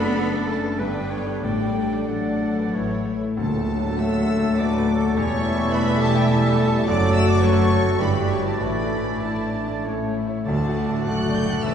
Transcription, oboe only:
0.00 0.81 A4 medium
0.79 1.11 B4 medium
1.10 1.43 C#5 medium
1.44 2.08 D5 medium
2.09 2.76 D5 medium
2.74 3.07 C#5 medium
3.38 6.83 A4 medium
6.88 8.02 A4 medium
8.01 9.87 D5 medium
9.85 10.16 C#5 medium
10.46 11.74 D5 medium

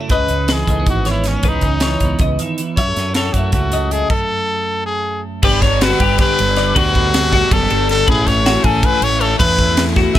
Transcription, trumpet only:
0.11 0.54 B4 loud
0.52 0.89 G#4 medium
0.90 1.06 F#4 medium
1.10 1.29 E4 medium
1.27 1.50 C#4 medium
1.48 2.23 D#4 medium
2.77 3.16 C#5 loud
3.14 3.34 A4 medium
3.33 3.53 F#4 medium
3.53 3.93 F#4 medium
3.92 4.10 G#4 medium
4.11 4.83 A4 loud
4.86 5.21 G#4 medium
5.44 5.63 G4 loud
5.62 5.83 C#5 medium
5.82 6.19 B4 medium
6.20 6.79 B4 loud
6.77 7.54 F#4 loud
7.53 7.90 A4 loud
7.90 8.07 A4 loud
8.10 8.29 G#4 loud
8.28 8.67 C#5 loud
8.66 8.87 A4 medium
8.85 9.05 B4 loud
9.03 9.22 C#5 loud
9.21 9.39 A4 loud
9.39 9.85 B4 loud
10.15 10.19 E5 loud

